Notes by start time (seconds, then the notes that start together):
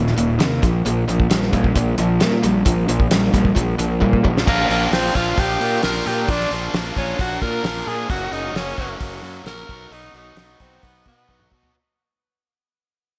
Already playing: D#1 D#2 A#2
0.07 snare
0.17 D#1 D#2 A#2, closed hi-hat
0.39 D#2 C3, snare, closed hi-hat
0.62 A#1 A#2 F3, kick, closed hi-hat
0.85 A#1 A#2 F3, closed hi-hat
1.08 A#1 A#2 F3, closed hi-hat
1.20 kick
1.30 A#1 A#2 G3, snare, closed hi-hat
1.43 snare
1.53 A#1 A#2 G3, kick, closed hi-hat
1.64 kick
1.75 A#1 A#2 F3, kick, closed hi-hat
1.98 A#1 A#2 F3, closed hi-hat
2.20 A#2 G3, snare, closed hi-hat
2.43 A#1 A#2 G3, closed hi-hat
2.65 A#1 A#2 F3, kick, closed hi-hat
2.88 A#1 A#2 F3, closed hi-hat
3.00 kick
3.11 A#1 A#2 G3, snare, closed hi-hat
3.33 A#1 A#2 G3, kick, closed hi-hat
3.45 kick
3.55 A#1 A#2 F3, kick, closed hi-hat
3.78 A#1 A#2 F3, closed hi-hat
4.00 A#2 G3, kick
4.13 kick
4.24 A#1 A#2 G3, kick
4.38 snare
4.46 A#1 A#2 F3 A#3 D4 F4, kick, crash
4.69 A#1 A#3 D4 F4, open hi-hat
4.91 A#1 F3 A#3 C4 D4 F4, snare, open hi-hat
5.14 A#1 A#3 D4 F4, kick, open hi-hat
5.38 A#1 G4, kick, open hi-hat
5.60 A#2, open hi-hat
5.82 A#1 A#2 F3 A#3 D4 F4 A#4, snare, open hi-hat
6.06 A#2 A#3 D4 F4 G4, open hi-hat
6.28 A#1 A#2 F3 A#3 D4 F4, kick, open hi-hat
6.41 snare
6.51 A#1 A#3 D4 F4, open hi-hat
6.74 A#1 F3 A#3 D4 F4, snare, open hi-hat
6.97 A#1 A#3 C#4 D4 F4, kick, open hi-hat
7.19 A#1 F#4, kick, open hi-hat
7.42 A#2 A#4, kick, open hi-hat
7.64 A#1 A#2 F3 A#3 D4 F4, snare, open hi-hat
7.87 A#2 A#3 D4 F4 G#4, open hi-hat
8.09 F#1 F#2 C#3 F#3 A#3 C#4 F#4, kick, open hi-hat
8.31 F#1 F#3 A#3 C#4 D#4 F#4, open hi-hat
8.54 F#1 F#3 A#3 C#4 F#4, snare, open hi-hat
8.77 F#1 F#3 A#3 C#4 F#4, kick, open hi-hat
9.00 F#1, kick, open hi-hat
9.22 F#2, open hi-hat
9.44 A#1 F#2 C#3 F#3 A#3 C#4 A#4, snare, open hi-hat
9.49 F#4
9.69 B1 B2 F#3 B3 D#4 F#4, kick, open hi-hat
9.91 B1 B2 F#3 B3 D#4 F#4, open hi-hat
10.04 snare
10.13 B1 B3 D#4 F#4, open hi-hat
10.36 B1 F#3 B3 D#4, snare, open hi-hat
10.40 F#4
10.60 B1 B3 C4 D#4 F#4, kick, open hi-hat
10.83 B1 B3, kick, open hi-hat
11.05 B2 B3, kick, open hi-hat
11.28 B1 B2 F#3 B3 D#4 F#4, kick
11.40 mid tom
11.52 B2 B3 D#4 F#4, kick
11.63 floor tom